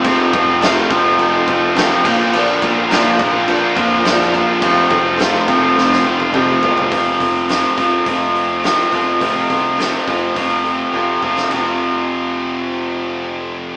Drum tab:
CC |x-x-x-x-x-x-x-x-|x-x-x-x-x-x-x-x-|x-x-x-x---------|----------------|
RD |----------------|----------------|----------------|----------------|
HH |----------------|----------------|----------------|o-o-o-o-o-o-o-o-|
SD |----o-------o---|----o-------oo--|----o---oo------|----o-------o---|
T1 |----------------|----------------|-----------o----|----------------|
T2 |----------------|----------------|------------o---|----------------|
FT |----------------|----------------|--------------oo|----------------|
BD |o-o---o---o---o-|--o---o---o-----|o-o---o---------|o-o---o-o-----o-|

CC |----------------|----------------|
RD |----------------|x---------------|
HH |o-o-o-o-o-o-----|----------------|
SD |----o----------o|----------------|
T1 |----------------|----------------|
T2 |----------------|----------------|
FT |----------------|----------------|
BD |o-o---o-o---o-o-|o---------------|